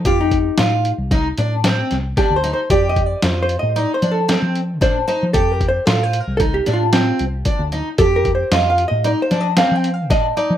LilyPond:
<<
  \new Staff \with { instrumentName = "Hollow-body jazz guitar" } { \time 5/4 \key f \mixolydian \tempo 4 = 114 f'16 ees'4. r2 r16 \tuplet 3/2 { g'8 c''8 c''8 } | \tuplet 3/2 { d''8 ees''8 d''8 c''8 c''8 ees''8 d''8 c''8 a'8~ } a'16 r8. c''8 c''8 | \tuplet 3/2 { a'8 bes'8 c''8 a'8 c''8 bes'8 a'8 g'8 f'8~ } f'8. r4 r16 | \tuplet 3/2 { a'8 bes'8 c''8 ees''8 f''8 ees''8 d''8 c''8 ees''8 f''8 g''8 f''8 } ees''8 d''8 | }
  \new Staff \with { instrumentName = "Twelve-string acoustic guitar" } { \time 5/4 \key f \mixolydian g'4 f'4 ees'8 d'8 c'4 d'8 ees'8 | g'4 f'4 ees'8 d'8 c'4 d'8 ees'8 | g'4 f'4 ees'8 d'8 c'4 d'8 ees'8 | g'4 f'4 ees'8 d'8 c'4 d'8 ees'8 | }
  \new Staff \with { instrumentName = "Picked electric bass" } { \clef bass \time 5/4 \key f \mixolydian f,4 a,8. c,8. a,4 c,8 r16 d,8 r16 | f,4 f,8. a,8 r16 f8. f8. a,8 r16 f16 | f,4 a,8. c,8. a,4 c,8 r16 d,8 r16 | f,4 f,8. a,8 r16 f8. f8. a,8 r16 f16 | }
  \new DrumStaff \with { instrumentName = "Drums" } \drummode { \time 5/4 <hh bd>8 <hh bd>8 <hh sn>8 hh8 <hh bd sn>8 hh8 <hh sn>8 <hh sn>8 <hh bd sn>8 hh8 | <hh bd>8 <hh bd>8 <hh sn>8 hh8 hh8 hh8 <hh sn>8 hh8 <hh bd sn>8 hh8 | <hh bd>8 <hh bd>8 <hh sn>8 hh8 <hh bd>8 <hh sn>8 <hh sn>8 hh8 <hh bd>8 hh8 | <hh bd>8 <hh bd>8 <hh sn>8 hh8 hh8 <hh sn>8 <hh sn>8 hh8 <hh bd sn>8 hh8 | }
>>